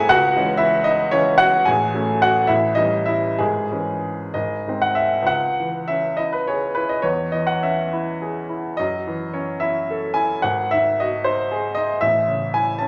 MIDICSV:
0, 0, Header, 1, 2, 480
1, 0, Start_track
1, 0, Key_signature, 4, "minor"
1, 0, Tempo, 528169
1, 65, Time_signature, 6, 3, 24, 8
1, 1504, Tempo, 559180
1, 2464, Tempo, 627615
1, 4384, Tempo, 584226
1, 6784, Tempo, 550459
1, 9184, Tempo, 526316
1, 10934, End_track
2, 0, Start_track
2, 0, Title_t, "Grand piano"
2, 0, Program_c, 0, 0
2, 0, Control_c, 0, 64, 127
2, 80, Control_c, 0, 64, 0
2, 84, Note_on_c, 0, 78, 125
2, 90, Note_on_c, 0, 37, 87
2, 92, Note_on_c, 0, 66, 97
2, 234, Control_c, 0, 64, 127
2, 307, Note_off_c, 0, 37, 0
2, 329, Note_on_c, 0, 52, 63
2, 330, Note_on_c, 0, 56, 65
2, 336, Note_on_c, 0, 61, 69
2, 517, Note_off_c, 0, 66, 0
2, 522, Note_on_c, 0, 76, 108
2, 533, Note_on_c, 0, 64, 79
2, 545, Note_off_c, 0, 78, 0
2, 756, Note_off_c, 0, 64, 0
2, 764, Note_on_c, 0, 75, 99
2, 768, Note_off_c, 0, 76, 0
2, 776, Note_on_c, 0, 63, 81
2, 996, Note_off_c, 0, 52, 0
2, 996, Note_off_c, 0, 56, 0
2, 999, Note_off_c, 0, 61, 0
2, 1002, Note_off_c, 0, 63, 0
2, 1012, Note_on_c, 0, 73, 104
2, 1013, Note_off_c, 0, 75, 0
2, 1018, Note_on_c, 0, 52, 64
2, 1024, Note_on_c, 0, 61, 78
2, 1025, Note_on_c, 0, 56, 60
2, 1248, Note_off_c, 0, 61, 0
2, 1251, Note_on_c, 0, 78, 121
2, 1259, Note_off_c, 0, 73, 0
2, 1265, Note_on_c, 0, 66, 87
2, 1468, Note_off_c, 0, 52, 0
2, 1472, Note_off_c, 0, 56, 0
2, 1489, Note_off_c, 0, 66, 0
2, 1499, Note_off_c, 0, 78, 0
2, 1504, Note_on_c, 0, 80, 97
2, 1508, Note_on_c, 0, 68, 72
2, 1521, Control_c, 0, 64, 0
2, 1524, Note_on_c, 0, 33, 86
2, 1661, Control_c, 0, 64, 127
2, 1741, Note_off_c, 0, 33, 0
2, 1748, Note_on_c, 0, 54, 58
2, 1759, Note_on_c, 0, 61, 63
2, 1762, Note_on_c, 0, 57, 56
2, 1946, Note_off_c, 0, 68, 0
2, 1977, Note_off_c, 0, 80, 0
2, 1988, Note_on_c, 0, 78, 104
2, 1999, Note_on_c, 0, 66, 73
2, 2190, Note_off_c, 0, 54, 0
2, 2196, Note_off_c, 0, 61, 0
2, 2197, Note_off_c, 0, 57, 0
2, 2206, Note_on_c, 0, 76, 94
2, 2214, Note_off_c, 0, 66, 0
2, 2216, Note_on_c, 0, 64, 65
2, 2219, Note_on_c, 0, 33, 70
2, 2224, Note_off_c, 0, 78, 0
2, 2235, Control_c, 0, 64, 0
2, 2371, Control_c, 0, 64, 127
2, 2443, Note_on_c, 0, 75, 96
2, 2446, Note_off_c, 0, 64, 0
2, 2451, Note_on_c, 0, 63, 72
2, 2457, Note_on_c, 0, 61, 54
2, 2458, Note_off_c, 0, 33, 0
2, 2458, Note_off_c, 0, 76, 0
2, 2458, Note_on_c, 0, 52, 48
2, 2459, Note_on_c, 0, 55, 53
2, 2673, Note_off_c, 0, 63, 0
2, 2680, Note_on_c, 0, 76, 87
2, 2686, Note_off_c, 0, 75, 0
2, 2698, Note_on_c, 0, 64, 68
2, 2904, Note_off_c, 0, 61, 0
2, 2905, Note_off_c, 0, 52, 0
2, 2905, Note_off_c, 0, 55, 0
2, 2923, Note_off_c, 0, 64, 0
2, 2931, Note_off_c, 0, 76, 0
2, 2932, Note_on_c, 0, 68, 83
2, 2938, Note_on_c, 0, 56, 62
2, 2942, Note_on_c, 0, 32, 65
2, 2955, Control_c, 0, 64, 0
2, 3118, Control_c, 0, 64, 127
2, 3175, Note_off_c, 0, 32, 0
2, 3177, Note_off_c, 0, 56, 0
2, 3181, Note_on_c, 0, 52, 51
2, 3183, Note_on_c, 0, 61, 50
2, 3189, Note_on_c, 0, 56, 51
2, 3631, Note_off_c, 0, 52, 0
2, 3632, Note_off_c, 0, 61, 0
2, 3635, Note_off_c, 0, 56, 0
2, 3661, Note_on_c, 0, 75, 74
2, 3666, Note_on_c, 0, 32, 56
2, 3677, Control_c, 0, 64, 0
2, 3803, Control_c, 0, 64, 127
2, 3903, Note_off_c, 0, 32, 0
2, 3917, Note_on_c, 0, 51, 44
2, 3921, Note_on_c, 0, 56, 44
2, 3930, Note_on_c, 0, 60, 53
2, 4026, Note_on_c, 0, 78, 83
2, 4030, Note_off_c, 0, 75, 0
2, 4129, Note_on_c, 0, 76, 80
2, 4149, Note_off_c, 0, 68, 0
2, 4150, Note_off_c, 0, 78, 0
2, 4336, Note_on_c, 0, 37, 59
2, 4359, Note_off_c, 0, 51, 0
2, 4361, Note_off_c, 0, 56, 0
2, 4365, Note_off_c, 0, 60, 0
2, 4370, Note_on_c, 0, 78, 87
2, 4373, Note_off_c, 0, 76, 0
2, 4398, Control_c, 0, 64, 0
2, 4567, Control_c, 0, 64, 127
2, 4640, Note_on_c, 0, 52, 46
2, 4860, Note_off_c, 0, 78, 0
2, 4871, Note_on_c, 0, 76, 81
2, 4889, Note_on_c, 0, 61, 43
2, 5021, Note_off_c, 0, 52, 0
2, 5110, Note_on_c, 0, 75, 82
2, 5112, Note_off_c, 0, 76, 0
2, 5122, Note_on_c, 0, 64, 44
2, 5124, Control_c, 0, 64, 0
2, 5231, Note_off_c, 0, 75, 0
2, 5240, Note_on_c, 0, 71, 66
2, 5249, Control_c, 0, 64, 127
2, 5267, Note_off_c, 0, 61, 0
2, 5356, Note_off_c, 0, 71, 0
2, 5362, Note_on_c, 0, 73, 74
2, 5373, Note_on_c, 0, 68, 52
2, 5502, Note_off_c, 0, 64, 0
2, 5586, Note_on_c, 0, 71, 75
2, 5596, Note_off_c, 0, 73, 0
2, 5601, Note_on_c, 0, 64, 49
2, 5706, Note_off_c, 0, 71, 0
2, 5706, Note_on_c, 0, 75, 72
2, 5742, Note_off_c, 0, 68, 0
2, 5767, Note_off_c, 0, 37, 0
2, 5812, Note_on_c, 0, 73, 79
2, 5821, Note_on_c, 0, 40, 60
2, 5824, Note_off_c, 0, 75, 0
2, 5831, Note_off_c, 0, 64, 0
2, 5843, Control_c, 0, 64, 0
2, 5987, Control_c, 0, 64, 127
2, 6056, Note_off_c, 0, 73, 0
2, 6057, Note_on_c, 0, 75, 79
2, 6066, Note_on_c, 0, 52, 46
2, 6177, Note_on_c, 0, 78, 75
2, 6180, Note_off_c, 0, 75, 0
2, 6303, Note_off_c, 0, 78, 0
2, 6311, Note_on_c, 0, 76, 68
2, 6314, Note_on_c, 0, 61, 45
2, 6456, Note_off_c, 0, 52, 0
2, 6553, Note_off_c, 0, 76, 0
2, 6558, Note_on_c, 0, 64, 48
2, 6696, Note_off_c, 0, 61, 0
2, 6795, Note_on_c, 0, 68, 50
2, 6936, Note_off_c, 0, 64, 0
2, 7034, Note_on_c, 0, 64, 47
2, 7183, Note_off_c, 0, 68, 0
2, 7239, Note_off_c, 0, 40, 0
2, 7277, Note_on_c, 0, 75, 91
2, 7278, Note_off_c, 0, 64, 0
2, 7295, Control_c, 0, 64, 0
2, 7296, Note_on_c, 0, 42, 60
2, 7438, Control_c, 0, 64, 127
2, 7539, Note_on_c, 0, 52, 54
2, 7760, Note_off_c, 0, 75, 0
2, 7769, Note_on_c, 0, 73, 64
2, 7775, Note_on_c, 0, 61, 49
2, 7912, Note_off_c, 0, 52, 0
2, 8000, Note_on_c, 0, 76, 83
2, 8002, Note_off_c, 0, 73, 0
2, 8014, Note_on_c, 0, 64, 55
2, 8147, Note_off_c, 0, 61, 0
2, 8267, Note_on_c, 0, 69, 57
2, 8380, Note_off_c, 0, 64, 0
2, 8466, Note_off_c, 0, 76, 0
2, 8470, Note_on_c, 0, 80, 91
2, 8486, Note_on_c, 0, 64, 54
2, 8626, Note_off_c, 0, 69, 0
2, 8681, Note_off_c, 0, 42, 0
2, 8708, Note_off_c, 0, 80, 0
2, 8716, Note_off_c, 0, 64, 0
2, 8718, Note_on_c, 0, 78, 78
2, 8722, Control_c, 0, 64, 0
2, 8726, Note_on_c, 0, 32, 67
2, 8847, Control_c, 0, 64, 127
2, 8955, Note_off_c, 0, 78, 0
2, 8969, Note_on_c, 0, 76, 90
2, 8987, Note_on_c, 0, 51, 55
2, 9195, Note_off_c, 0, 76, 0
2, 9222, Note_on_c, 0, 75, 82
2, 9237, Note_on_c, 0, 66, 51
2, 9349, Note_off_c, 0, 51, 0
2, 9444, Note_off_c, 0, 75, 0
2, 9446, Note_on_c, 0, 72, 77
2, 9459, Note_on_c, 0, 63, 57
2, 9594, Note_off_c, 0, 66, 0
2, 9693, Note_on_c, 0, 68, 60
2, 9826, Note_off_c, 0, 63, 0
2, 9903, Note_on_c, 0, 75, 92
2, 9915, Note_off_c, 0, 72, 0
2, 9927, Note_on_c, 0, 63, 58
2, 10063, Note_off_c, 0, 68, 0
2, 10120, Note_off_c, 0, 32, 0
2, 10142, Note_on_c, 0, 76, 97
2, 10145, Note_off_c, 0, 75, 0
2, 10149, Note_on_c, 0, 33, 60
2, 10157, Note_off_c, 0, 63, 0
2, 10161, Control_c, 0, 64, 0
2, 10287, Control_c, 0, 64, 127
2, 10391, Note_on_c, 0, 49, 53
2, 10627, Note_on_c, 0, 80, 86
2, 10628, Note_off_c, 0, 76, 0
2, 10634, Note_on_c, 0, 64, 46
2, 10774, Note_off_c, 0, 49, 0
2, 10851, Note_on_c, 0, 81, 70
2, 10866, Note_off_c, 0, 80, 0
2, 10869, Note_on_c, 0, 61, 48
2, 10934, Note_off_c, 0, 33, 0
2, 10934, Note_off_c, 0, 61, 0
2, 10934, Note_off_c, 0, 64, 0
2, 10934, Note_off_c, 0, 81, 0
2, 10934, End_track
0, 0, End_of_file